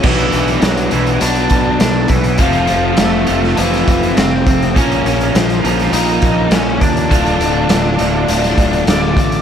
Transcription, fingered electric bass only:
\new Staff \with { instrumentName = "Fingered electric bass" } { \clef bass \time 4/4 \key d \dorian \tempo 4 = 102 b,,8 b,,8 b,,8 b,,8 b,,8 b,,8 b,,8 b,,8 | f,,8 f,,8 f,,8 f,,8 f,,8 f,,8 f,,8 f,,8 | bes,,8 bes,,8 bes,,8 bes,,8 bes,,8 bes,,8 bes,,8 ees,8 | d,,8 d,,8 d,,8 d,,8 d,,8 d,,8 d,,8 a,,8 | }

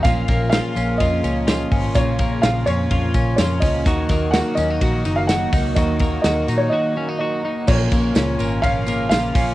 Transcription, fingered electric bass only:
\new Staff \with { instrumentName = "Fingered electric bass" } { \clef bass \time 4/4 \key bes \phrygian \tempo 4 = 126 bes,,8 bes,,8. r16 bes,,8 f,8 des,4 aes,,8 | bes,,4 bes,,8 f,8 f,8 bes,,8 f,8 des,8 | ees,8 ees,8. r16 ees,8 bes,,8 ges,,4 des,8 | ees,4 ees,8 bes,8 r2 |
bes,,8 bes,,8 des,8 aes,,4. bes,,8 bes,,8 | }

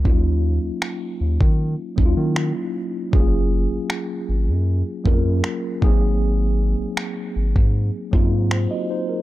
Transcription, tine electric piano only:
\new Staff \with { instrumentName = "Tine electric piano" } { \time 4/4 \key ees \minor \tempo 4 = 78 << { r1 | r1 | r2. <ees' c''>16 <ges' ees''>16 <ees' c''>16 bes'16 | } \\ { <f ges bes des' ees' f'>4~ <f ges bes des' ees' f'>16 r4 r16 <ges bes des' ees' fes' f'>4 r8 | <ges aes bes des' f' aes'>4~ <ges aes bes des' f' aes'>16 r4 r16 <ges bes des' f' bes'>4 <ges bes c' ees' aes'>8~ | <ges bes c' ees' aes'>4 r4. <ges bes c' ees' f'>4 r8 | } >> }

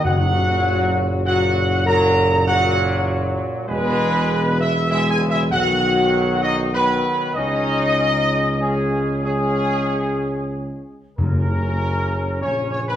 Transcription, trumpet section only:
\new Staff \with { instrumentName = "Trumpet section" } { \time 3/4 \key cis \dorian \tempo 4 = 98 fis''2 fis''4 | ais''4 fis''4 r4 | b'4. e''8 \tuplet 3/2 { e''8 gis''8 e''8 } | fis''4. dis''8 b'4 |
dis''2 gis'4 | gis'2~ gis'8 r8 | \key fis \major ais'2 cis''8 cis''16 b'16 | }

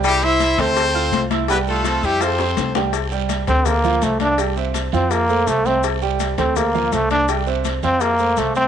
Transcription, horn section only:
\new Staff \with { instrumentName = "Horn section" } { \time 4/4 \key c \major \tempo 4 = 166 <g e' g'>8 <e' c'' e''>4 <c' a' c''>4.~ <c' a' c''>16 r8. | <b g' b'>8 <a f' a'>4 <g e' g'>8 <c' a' c''>4. r8 | r1 | r1 |
r1 | r1 | }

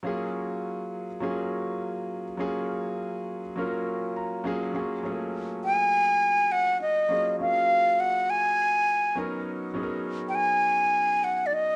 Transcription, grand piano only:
\new Staff \with { instrumentName = "Grand piano" } { \time 4/4 \key fis \major \tempo 4 = 102 << { r1 | r2. ais''8 eis''8 | r1 | r1 |
r1 | } \\ { <fis ais cis' eis' gis'>4. r8 <fis ais cis' eis' gis'>4. r8 | <fis ais cis' eis' gis'>4. r8 <fis ais cis' eis' ais'>4. <fis ais cis' eis' gis'>8 | <fis ais cis' eis' gis'>8 <fis a ais cis' eis' gis'>4. r2 | <fis ais cis' eis' gis'>8 <fis ais cis' eis' ais'>4. r4. <fis b cis' dis' ais'>8~ |
<fis b cis' dis' ais'>8 <fis b cis' dis' gis' ais'>4. r2 | } >> }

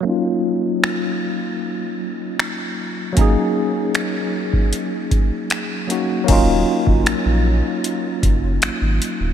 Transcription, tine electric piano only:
\new Staff \with { instrumentName = "Tine electric piano" } { \time 4/4 \key ees \minor \tempo 4 = 77 <ges bes des' ees' f'>1 | <ges bes des' ees' aes'>2.~ <ges bes des' ees' aes'>8 <ges bes des' ees' ges'>8 | <ges bes des' ees' f'>1 | }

